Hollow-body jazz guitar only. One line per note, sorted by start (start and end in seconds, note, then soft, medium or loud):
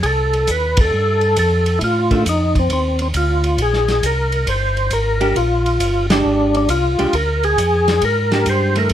2.11 2.24 D#3 medium
2.11 2.24 A3 medium
2.11 2.25 D4 medium
5.21 5.34 G#3 medium
5.21 5.34 D4 medium
5.21 5.35 G4 medium
6.10 6.66 G#3 medium
6.10 6.66 D4 medium
6.10 6.67 G4 medium
6.99 7.12 G#3 medium
6.99 7.12 D4 medium
6.99 7.12 G4 medium
8.32 8.73 G#3 medium
8.32 8.74 D4 medium
8.32 8.74 G4 medium
8.76 8.93 D#3 medium
8.76 8.93 A3 medium